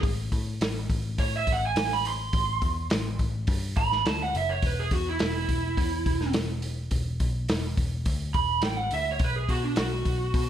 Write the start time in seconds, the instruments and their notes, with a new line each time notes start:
0.03 picked electric bass A1, kick, open hi-hat
0.32 picked electric bass A2, kick, open hi-hat
0.61 picked electric bass A1, snare, open hi-hat
0.90 picked electric bass A1, kick, open hi-hat
1.18 picked electric bass A2, lead electric guitar C#5, kick, open hi-hat
1.37 lead electric guitar E5
1.47 picked electric bass A1, kick, open hi-hat
1.52 lead electric guitar F#5
1.66 lead electric guitar G#5
1.76 picked electric bass A1, snare, open hi-hat
1.93 lead electric guitar B5
2.05 lead electric guitar C6, open hi-hat
2.33 picked electric bass A1, kick, open hi-hat
2.62 picked electric bass E2, kick, open hi-hat
2.90 picked electric bass A1, snare, open hi-hat
3.19 picked electric bass A1, kick, open hi-hat
3.47 picked electric bass G2, kick, open hi-hat
3.76 picked electric bass A1, lead electric guitar B5, kick, open hi-hat
3.92 snare
4.06 picked electric bass D2, lead electric guitar A5, snare, open hi-hat
4.23 lead electric guitar F#5
4.34 picked electric bass F#1, lead electric guitar E5, open hi-hat
4.50 lead electric guitar C#5
4.62 picked electric bass E1, lead electric guitar B4, kick, open hi-hat
4.79 lead electric guitar G#4
4.91 picked electric bass E2, lead electric guitar F#4, kick, open hi-hat
5.09 lead electric guitar E4
5.19 picked electric bass E1, lead electric guitar E4, snare, open hi-hat
5.48 picked electric bass E1, kick, open hi-hat
5.77 picked electric bass E2, kick, open hi-hat
6.06 picked electric bass E1, kick, open hi-hat
6.21 snare
6.33 picked electric bass E1, snare, open hi-hat
6.62 open hi-hat
6.91 picked electric bass E1, kick, open hi-hat
7.20 picked electric bass B1, kick, open hi-hat
7.49 picked electric bass E1, snare, open hi-hat
7.77 picked electric bass E1, kick, open hi-hat
8.05 picked electric bass D2, kick, open hi-hat
8.34 picked electric bass E1, lead electric guitar B5, kick, open hi-hat
8.62 picked electric bass A1, lead electric guitar G5, snare, open hi-hat
8.77 lead electric guitar F#5
8.91 picked electric bass D2, lead electric guitar E5, open hi-hat
9.12 lead electric guitar C#5
9.19 picked electric bass B1, kick, open hi-hat
9.24 lead electric guitar B4
9.36 lead electric guitar G#4
9.49 picked electric bass B2, lead electric guitar F#4, kick, open hi-hat
9.64 lead electric guitar D4
9.76 picked electric bass B1, lead electric guitar F#4, snare, open hi-hat
10.05 picked electric bass B1, kick, open hi-hat
10.34 picked electric bass B2, kick, open hi-hat